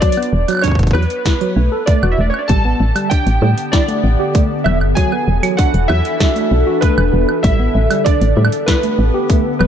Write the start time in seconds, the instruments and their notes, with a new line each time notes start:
0.00 tine electric piano F#3, synth keys D5, kick, closed hi-hat
0.12 closed hi-hat
0.17 tine electric piano B3, high woodblock
0.23 closed hi-hat
0.33 fm bass E1
0.48 tine electric piano F#3, closed hi-hat, high woodblock
0.51 high woodblock
0.53 high woodblock
0.55 high woodblock
0.57 high woodblock
0.59 high woodblock
0.61 tine electric piano D4, synth keys C#5, kick, closed hi-hat, high woodblock
0.68 kick
0.71 kick
0.75 fm bass E1, kick
0.79 kick, closed hi-hat
0.83 kick
0.87 kick, closed hi-hat
0.91 fm bass E2, synth keys B4, kick, closed hi-hat, high woodblock
0.95 tine electric piano F#3
1.02 closed hi-hat
1.10 closed hi-hat
1.26 tine electric piano E4, kick, snare, closed hi-hat
1.41 tine electric piano F#3, closed hi-hat
1.56 fm bass B1, tine electric piano A3
1.72 tine electric piano A4
1.86 tine electric piano A3, synth keys D5, kick, closed hi-hat
2.03 fm bass E1, tine electric piano F#4, high woodblock
2.12 synth keys E5
2.18 fm bass E1, tine electric piano A3, synth keys D5
2.30 synth keys C#5
2.34 high woodblock
2.39 synth keys D5
2.48 fm bass A1, ambient pad D3, tine electric piano G3, synth keys A5, kick, closed hi-hat
2.65 tine electric piano B3
2.75 ambient pad B3
2.80 fm bass A1
2.96 tine electric piano G3, closed hi-hat, high woodblock
3.10 tine electric piano D4, synth keys G5, kick, closed hi-hat
3.27 fm bass A1, closed hi-hat
3.42 fm bass A2, tine electric piano G3
3.58 ambient pad G4 A4, closed hi-hat
3.72 tine electric piano E4, synth keys D5, kick, snare, closed hi-hat
3.88 tine electric piano A3, closed hi-hat
4.04 fm bass A1
4.20 tine electric piano G4
4.35 tine electric piano A3, kick, closed hi-hat
4.64 fm bass E1, tine electric piano B3, synth keys E5, low conga, high woodblock
4.81 fm bass G1, high woodblock
4.95 ambient pad E3, tine electric piano F#3, synth keys G#5, kick, closed hi-hat
5.12 tine electric piano B3, high woodblock
5.28 fm bass E1, ambient pad D4 F#4
5.43 tine electric piano F#3, closed hi-hat, high woodblock
5.57 tine electric piano D4, synth keys F#5, kick, closed hi-hat
5.74 fm bass E1, closed hi-hat
5.88 fm bass E2, tine electric piano F#3, synth keys E5, high woodblock
6.05 closed hi-hat
6.20 tine electric piano E4, kick, snare, closed hi-hat
6.36 tine electric piano A3, closed hi-hat
6.51 fm bass B1
6.67 tine electric piano F#4
6.81 tine electric piano A3, synth keys B4, kick, closed hi-hat
6.98 fm bass E1, high woodblock
7.13 fm bass E1, tine electric piano B3
7.29 high woodblock
7.43 fm bass A1, ambient pad D3, tine electric piano G3, synth keys E5, kick, closed hi-hat
7.60 tine electric piano B3
7.75 fm bass A1
7.91 tine electric piano G3, closed hi-hat, high woodblock
8.05 tine electric piano D4, synth keys D5, kick, closed hi-hat
8.19 fm bass A1, ambient pad B3, closed hi-hat
8.37 fm bass A2, tine electric piano G3
8.45 high woodblock
8.52 ambient pad G4, closed hi-hat
8.66 tine electric piano E4, synth keys B4, kick, snare, closed hi-hat
8.83 tine electric piano A3, closed hi-hat
8.99 fm bass A1
9.14 tine electric piano G4
9.30 tine electric piano A3, kick, closed hi-hat
9.59 fm bass E1, tine electric piano B3, synth keys B4, low conga, high woodblock